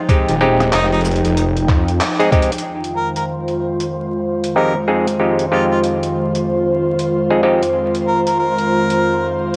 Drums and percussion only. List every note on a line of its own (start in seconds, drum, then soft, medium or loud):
0.09 kick loud
0.09 closed hi-hat medium
0.29 closed hi-hat medium
0.41 cross-stick soft
0.60 cross-stick medium
0.60 closed hi-hat soft
0.73 clap loud
0.73 closed hi-hat medium
0.93 closed hi-hat soft
0.94 closed hi-hat soft
1.01 closed hi-hat soft
1.05 closed hi-hat soft
1.05 shaker medium
1.11 closed hi-hat soft
1.16 closed hi-hat soft
1.25 closed hi-hat medium
1.37 closed hi-hat medium
1.57 closed hi-hat soft
1.68 kick loud
1.68 clap medium
1.88 closed hi-hat soft
2.01 clap loud
2.01 closed hi-hat medium
2.20 closed hi-hat soft
2.32 kick loud
2.32 closed hi-hat medium
2.42 closed hi-hat medium
2.52 closed hi-hat medium
2.58 closed hi-hat medium
2.84 closed hi-hat soft
3.16 closed hi-hat medium
3.48 closed hi-hat soft
3.80 closed hi-hat medium
4.44 closed hi-hat medium
5.07 closed hi-hat medium
5.39 closed hi-hat medium
5.84 closed hi-hat medium
6.03 closed hi-hat soft
6.35 closed hi-hat medium
6.99 closed hi-hat medium
7.63 closed hi-hat medium
7.95 closed hi-hat soft
8.27 closed hi-hat medium
8.58 closed hi-hat soft
8.90 closed hi-hat medium